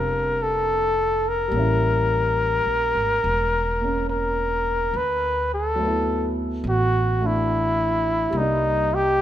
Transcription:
Already playing: F1 G3 C4 D4 F4 A#4
0.43 A4
1.29 A#4
1.48 A1 G3 A#3
1.56 C#4 E4
2.65 A#1
2.95 G#1
3.24 E1
3.81 A#3 C#4
4.10 A#4
4.94 D2 B4
5.54 A4
5.75 F#3 A3
5.83 B3 E4
6.64 A1
6.69 F#4
7.21 A3 D4
7.26 E4
8.30 C2 G3 A#3
8.37 D#4 D5
8.94 G4

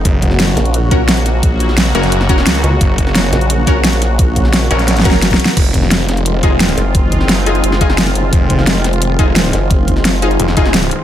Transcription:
0.05 F#1 C#3 F#3 A#3 F#4, kick, closed hi-hat
0.22 kick, closed hi-hat
0.31 snare
0.40 snare, closed hi-hat
0.57 A#1, snare, closed hi-hat
0.65 closed hi-hat
0.74 closed hi-hat
0.91 C#4 F#4 A#4, kick, closed hi-hat
1.09 snare, closed hi-hat
1.17 closed hi-hat
1.26 snare, closed hi-hat
1.43 kick, closed hi-hat
1.60 closed hi-hat
1.69 snare
1.78 snare, closed hi-hat
1.95 F#1 C#4 F#4 A#4, closed hi-hat
2.03 snare, closed hi-hat
2.12 closed hi-hat
2.21 snare
2.29 C#4 F#4 A#4, kick, closed hi-hat
2.38 snare
2.46 C#2, snare, closed hi-hat
2.55 closed hi-hat
2.64 C#2, closed hi-hat
2.81 F#1, kick, closed hi-hat
2.98 kick, closed hi-hat
3.07 snare
3.15 snare, closed hi-hat
3.33 A#1, snare, closed hi-hat
3.41 closed hi-hat
3.50 closed hi-hat
3.67 C#4 F#4 A#4, kick, closed hi-hat
3.84 snare, closed hi-hat
3.93 closed hi-hat
4.02 snare, closed hi-hat
4.19 kick, closed hi-hat
4.36 kick, closed hi-hat
4.45 snare
4.53 snare, closed hi-hat
4.71 A#1 C#4 F#4 A#4, closed hi-hat
4.79 snare, closed hi-hat
4.88 snare, closed hi-hat
4.97 snare, closed hi-hat
5.05 F#1 C#4 F#4 A#4, kick, closed hi-hat
5.11 snare
5.22 snare, closed hi-hat
5.31 kick, snare, closed hi-hat
5.40 closed hi-hat
5.45 snare
5.57 F1 D#3 G#3 C4 F4, kick, closed hi-hat, crash
5.74 kick, closed hi-hat
5.83 snare
5.91 snare, closed hi-hat
6.09 snare, closed hi-hat
6.17 closed hi-hat
6.26 closed hi-hat
6.43 F1 D#4 F4 G#4, kick, closed hi-hat
6.60 snare, closed hi-hat
6.69 closed hi-hat
6.78 F#1, snare, closed hi-hat
6.95 kick, closed hi-hat
7.12 kick, closed hi-hat
7.21 snare
7.29 snare, closed hi-hat
7.46 D#4 F4 G#4, closed hi-hat
7.55 closed hi-hat
7.64 F#1, closed hi-hat
7.72 snare
7.81 D#4 F4 G#4, kick, closed hi-hat
7.90 snare
7.98 snare, closed hi-hat
8.07 closed hi-hat
8.15 F#1, closed hi-hat
8.33 F1, kick, closed hi-hat
8.50 kick, closed hi-hat
8.59 snare
8.67 snare, closed hi-hat
8.84 snare, closed hi-hat
8.93 closed hi-hat
9.02 closed hi-hat
9.19 F1 D#4 F4 G#4, kick, closed hi-hat
9.36 snare, closed hi-hat
9.45 closed hi-hat
9.53 F#1, snare, closed hi-hat
9.71 kick, closed hi-hat
9.88 kick, closed hi-hat
9.96 snare
10.05 snare, closed hi-hat
10.22 D#4 F4 G#4, closed hi-hat
10.31 closed hi-hat
10.40 F1, closed hi-hat
10.48 snare
10.57 D#4 F4 G#4, kick, closed hi-hat
10.65 snare
10.74 snare, closed hi-hat
10.83 closed hi-hat
10.91 closed hi-hat

